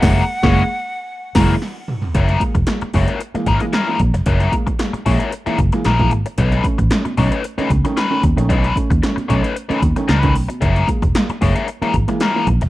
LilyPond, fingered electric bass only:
\new Staff \with { instrumentName = "Fingered electric bass" } { \clef bass \time 4/4 \key ges \major \tempo 4 = 113 ges,,8 r16 ges,,8 r4 r16 ges,,8 r4 | ges,,8 r16 fes,,16 r8 ges,,16 r8. aes,,16 r8. bes,,16 f,,16 | ges,,8 r4 bes,,16 r8. ges,,16 r16 bes,,8 aes,,16 r16 | ces,8 r16 a,,16 r8 ces,16 r8. des,16 r8. ees,16 bes,,16 |
ces,8 r16 ees,16 r8 ces,16 r8. ees,16 r16 des,8 ces,16 r16 | ges,,8 r16 fes,,16 r8 ges,,16 r8. aes,,16 r8. bes,,16 f,,16 | }